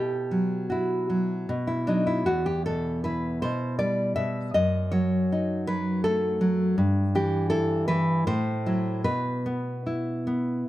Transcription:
0.00 1.45 B2 soft
0.00 0.68 G4 medium
0.31 1.08 F#3 soft
0.70 1.50 E4 soft
0.70 1.45 F#4 soft
1.10 1.49 F#3 soft
1.49 2.25 B2 soft
1.67 1.88 E4 soft
1.87 2.23 F#3 soft
1.87 2.08 D4 medium
1.87 2.24 D#4 soft
2.07 2.27 E4 soft
2.26 3.43 E2 soft
2.26 2.46 F#4 medium
2.46 2.65 G4 medium
2.66 3.42 B2 soft
2.66 3.03 A4 medium
3.04 4.18 E4 soft
3.04 3.41 B4 medium
3.42 4.16 B2 soft
3.42 3.78 C5 medium
3.79 4.56 G3 soft
3.79 4.15 D5 medium
4.16 4.55 B2 soft
4.16 4.53 E5 medium
4.54 6.74 F#2 soft
4.54 4.92 D#5 medium
4.92 5.67 F#3 soft
4.92 5.65 C#5 medium
5.32 6.42 D#4 soft
5.67 6.40 F#3 soft
5.67 6.03 B4 medium
6.04 6.79 A3 soft
6.04 6.75 A4 medium
6.41 6.78 F#3 soft
6.78 8.22 G2 medium
7.15 7.87 E3 soft
7.15 7.49 G4 medium
7.50 8.26 E4 medium
7.50 7.86 A4 medium
7.88 8.26 E3 soft
7.88 8.25 B4 medium
8.27 9.03 A2 medium
8.27 9.02 C5 medium
8.66 9.02 F#3 soft
8.66 9.02 E4 soft
9.04 10.64 B2 soft
9.04 10.69 B4 medium
9.46 10.26 B3 soft
9.87 10.68 E4 soft
10.27 10.68 B3 soft

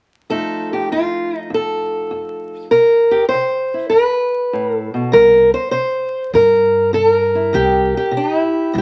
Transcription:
0.30 0.86 F2 medium
0.30 2.69 F3 soft
0.30 2.70 A3 soft
0.30 1.37 D#4 soft
0.30 0.71 A4 loud
0.73 0.91 G4 medium
0.92 1.47 F2 medium
0.92 1.37 F4 medium
1.37 1.51 D#4 medium
1.50 2.06 F2 medium
1.54 2.71 A4 medium
2.11 2.67 F2 medium
2.71 3.28 C3 medium
2.71 3.28 A#4 medium
3.11 3.23 G4 medium
3.29 3.89 C5 medium
3.34 3.89 C3 medium
3.74 3.90 E4 soft
3.90 4.48 G2 medium
3.90 4.77 B4 medium
4.53 4.93 A2 medium
4.77 5.12 A4 medium
4.94 5.13 B2 medium
5.12 5.50 C2 medium
5.12 5.69 C3 medium
5.12 5.53 A#4 loud
5.54 5.70 C5 medium
5.71 6.29 C3 medium
5.71 6.32 C5 loud
6.34 7.50 G2 medium
6.34 6.90 C3 medium
6.34 6.93 A#4 medium
6.93 7.50 C3 medium
6.93 7.08 A4 medium
7.08 8.14 A#4 medium
7.35 7.54 E4 soft
7.53 7.91 C2 medium
7.53 8.10 C3 medium
7.53 7.95 G4 loud
7.97 8.76 G4 medium
8.11 8.69 C3 medium
8.17 8.37 D#4 medium
8.37 8.82 E4 medium
8.73 8.82 G2 medium
8.73 8.82 C3 medium
8.78 8.82 G4 medium

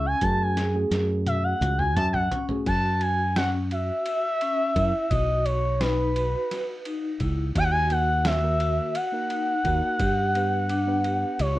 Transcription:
0.00 0.14 C#2 medium
0.00 0.14 C#4 medium
0.06 0.25 G#5 loud
0.21 0.84 F#2 loud
0.21 0.62 A3 medium
0.21 0.62 C#4 medium
0.21 0.49 F#4 medium
0.21 0.62 F#4 medium
0.21 0.63 G#4 medium
0.21 0.44 A5 loud
0.21 kick loud
0.21 closed hi-hat medium
0.42 0.76 G#5 medium
0.57 1.10 G#4 medium
0.57 snare medium
0.57 closed hi-hat medium
0.74 1.81 A3 medium
0.74 1.81 C#4 medium
0.74 1.81 F#4 medium
0.74 1.82 G#4 medium
0.91 1.53 F#2 medium
0.91 snare medium
0.91 closed hi-hat medium
1.26 1.53 F#4 medium
1.26 1.45 E5 medium
1.26 closed hi-hat medium
1.26 high tom medium
1.44 1.80 F#5 medium
1.61 1.96 C#2 medium
1.61 2.15 F#4 medium
1.61 closed hi-hat medium
1.61 mid tom medium
1.78 1.95 G#5 loud
1.78 mid tom medium
1.95 2.27 F#2 loud
1.95 2.12 A5 loud
1.95 closed hi-hat medium
1.95 mid tom medium
2.13 2.46 F#5 medium
2.13 floor tom medium
2.32 2.58 C#4 medium
2.32 closed hi-hat medium
2.32 floor tom loud
2.49 2.67 A3 medium
2.49 2.67 C#4 medium
2.49 2.67 F#4 medium
2.49 2.68 G#4 medium
2.49 floor tom medium
2.66 3.90 F#2 medium
2.66 3.20 F#4 medium
2.66 3.03 A5 loud
2.66 kick medium
2.66 ride medium
3.01 3.35 G#5 loud
3.01 ride medium
3.36 3.63 C#4 medium
3.36 3.50 F#5 medium
3.36 snare loud
3.36 ride medium
3.71 4.24 F#4 medium
3.71 5.12 E5 loud
3.71 ride medium
4.06 ride medium
4.41 4.68 C#4 medium
4.41 ride medium
4.76 4.91 F#2 loud
4.76 5.03 E4 medium
4.76 kick medium
4.76 ride medium
5.10 6.34 B1 loud
5.10 5.64 F#4 medium
5.10 5.46 D#5 medium
5.10 kick loud
5.10 ride medium
5.45 5.82 C#5 medium
5.45 ride medium
5.80 6.08 D#4 medium
5.80 7.20 B4 medium
5.80 snare medium
5.80 ride medium
6.16 6.69 F#4 medium
6.16 ride medium
6.51 snare soft
6.51 ride medium
6.85 7.12 D#4 medium
6.85 ride medium
7.20 7.51 C#2 medium
7.20 7.47 E4 medium
7.20 kick medium
7.20 ride medium
7.55 8.79 D#2 loud
7.55 8.09 F#4 medium
7.55 7.65 G#5 loud
7.55 kick loud
7.55 ride medium
7.64 7.72 F#5 medium
7.71 7.93 G#5 loud
7.90 8.30 A#3 medium
7.90 8.30 D#4 medium
7.90 8.31 F#4 medium
7.90 8.31 A#4 medium
7.90 8.28 F#5 loud
7.90 ride medium
8.25 8.52 F#4 medium
8.25 8.97 E5 loud
8.25 snare loud
8.25 ride medium
8.42 8.96 D#3 medium
8.42 8.96 A#3 medium
8.42 8.96 F#4 medium
8.42 8.97 A#4 medium
8.60 9.13 F#4 medium
8.60 ride medium
8.95 11.39 F#5 loud
8.95 ride medium
9.12 9.52 A#3 medium
9.12 9.53 D#4 medium
9.12 9.53 F#4 medium
9.12 9.53 A#4 medium
9.30 9.57 D#4 medium
9.30 ride medium
9.65 9.80 D#2 loud
9.65 10.00 A#3 medium
9.65 10.01 D#4 medium
9.65 9.92 F#4 medium
9.65 10.01 F#4 medium
9.65 10.01 A#4 medium
9.65 kick medium
9.65 ride medium
9.99 11.23 G2 loud
9.99 10.53 G4 medium
9.99 kick loud
9.99 ride medium
10.35 10.75 B3 medium
10.35 10.75 D4 medium
10.35 10.76 G4 medium
10.35 10.76 B4 medium
10.35 ride medium
10.69 10.96 D4 medium
10.69 ride medium
10.87 11.39 B3 medium
10.87 11.40 D4 medium
10.87 11.40 G4 medium
10.87 11.40 B4 medium
11.04 11.57 G4 medium
11.04 ride medium
11.39 11.59 C#2 loud
11.39 11.59 C#5 medium
11.39 ride medium
11.55 11.59 C#4 medium
11.55 11.59 F4 medium

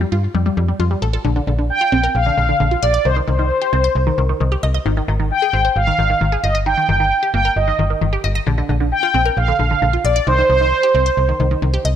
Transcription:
0.01 0.11 G3 medium
0.12 0.28 G2 medium
0.12 0.22 F4 medium
0.35 0.50 F2 loud
0.35 0.45 G3 medium
0.46 0.56 G3 medium
0.57 0.73 F2 loud
0.57 0.67 G3 medium
0.68 0.78 G3 medium
0.80 0.95 F2 loud
0.80 0.90 F4 medium
0.91 1.01 G3 medium
1.02 1.18 A1 loud
1.02 1.12 A4 medium
1.13 1.24 A4 medium
1.25 1.41 A#1 loud
1.25 1.35 D3 loud
1.36 1.46 D3 medium
1.47 1.71 A#1 loud
1.47 1.57 D3 medium
1.59 1.69 D3 medium
1.70 2.16 G5 loud
1.81 1.91 F4 medium
1.92 2.08 A#1 loud
1.92 2.02 C4 medium
2.03 2.14 A#4 medium
2.15 2.31 A#1 loud
2.15 2.85 F5 loud
2.26 2.36 D3 medium
2.37 2.53 A#1 medium
2.37 2.48 D3 medium
2.49 2.59 D3 medium
2.60 2.76 A#1 loud
2.60 2.70 D3 medium
2.71 2.81 F4 medium
2.83 2.99 A#1 loud
2.83 2.93 D5 medium
2.83 3.06 D5 medium
2.94 3.04 D5 medium
3.05 3.21 C2 loud
3.05 3.15 D#3 medium
3.05 3.16 C5 medium
3.16 3.27 D#3 medium
3.28 3.52 C2 loud
3.28 3.38 D#3 medium
3.28 4.59 C5 medium
3.39 3.49 D#3 medium
3.62 3.72 G4 medium
3.73 3.89 C2 loud
3.73 3.83 C4 medium
3.84 3.94 C5 medium
3.95 4.11 C2 loud
4.07 4.17 D#3 medium
4.18 4.34 C2 loud
4.18 4.28 D#3 medium
4.29 4.39 D#3 medium
4.40 4.56 C2 loud
4.40 4.51 D#3 medium
4.52 4.62 G4 medium
4.63 4.79 C2 loud
4.63 4.73 D#5 medium
4.74 4.84 D#5 medium
4.86 5.01 G#1 loud
4.86 4.96 D#3 loud
4.97 5.07 D#3 medium
5.08 5.32 G#1 loud
5.08 5.18 D#3 medium
5.20 5.30 D#3 medium
5.31 5.77 G5 loud
5.42 5.52 G#4 medium
5.53 5.69 G#1 loud
5.53 5.63 C4 medium
5.65 5.75 C5 medium
5.76 5.92 G#1 loud
5.76 6.46 F5 loud
5.87 5.97 D#3 medium
5.99 6.14 G#1 loud
5.99 6.09 D#3 medium
6.10 6.20 D#3 medium
6.21 6.37 G#1 loud
6.21 6.31 D#3 medium
6.32 6.42 G#4 medium
6.44 6.75 G1 loud
6.44 6.54 D#5 medium
6.55 6.65 D#5 medium
6.66 6.76 D#3 loud
6.66 7.33 G5 loud
6.77 6.87 D#3 medium
6.89 7.12 G1 loud
6.89 6.99 D#3 medium
7.00 7.10 D#3 medium
7.23 7.33 G4 medium
7.34 7.50 G1 loud
7.34 7.44 A#3 medium
7.34 7.57 G5 loud
7.45 7.55 A#4 medium
7.56 7.72 G1 loud
7.56 7.98 D#5 medium
7.68 7.78 D#3 medium
7.79 7.95 G1 loud
7.79 7.89 D#3 medium
7.90 8.00 D#3 medium
8.01 8.17 G1 loud
8.01 8.12 D#3 medium
8.13 8.23 G4 medium
8.24 8.40 G1 loud
8.24 8.34 D#5 medium
8.35 8.45 D#5 medium
8.47 8.62 A#1 loud
8.47 8.57 D3 loud
8.58 8.68 D3 medium
8.69 8.93 A#1 loud
8.69 8.79 D3 medium
8.80 8.91 D3 medium
8.92 9.38 G5 loud
9.03 9.13 F4 medium
9.14 9.30 A#1 loud
9.14 9.24 C4 medium
9.25 9.36 A#4 medium
9.37 9.53 A#1 loud
9.37 10.07 F5 loud
9.48 9.58 D3 medium
9.59 9.75 A#1 medium
9.59 9.69 D3 medium
9.71 9.81 D3 medium
9.82 9.98 A#1 loud
9.82 9.92 D3 medium
9.93 10.03 F4 medium
10.04 10.20 A#1 loud
10.04 10.15 D5 medium
10.04 10.28 D5 medium
10.16 10.26 D5 medium
10.27 10.43 C2 loud
10.27 10.37 D#3 loud
10.27 10.48 C5 loud
10.38 10.48 D#3 medium
10.50 10.73 C2 loud
10.50 10.60 D#3 medium
10.50 11.81 C5 medium
10.61 10.71 D#3 medium
10.83 10.93 G4 medium
10.95 11.10 C2 loud
10.95 11.05 C4 medium
11.06 11.16 C5 medium
11.17 11.33 C2 loud
11.29 11.39 D#3 medium
11.40 11.56 C2 loud
11.40 11.50 D#3 medium
11.51 11.61 D#3 medium
11.62 11.78 C2 loud
11.62 11.72 D#3 medium
11.74 11.84 G4 medium
11.85 11.96 C2 loud
11.85 11.95 D#5 medium

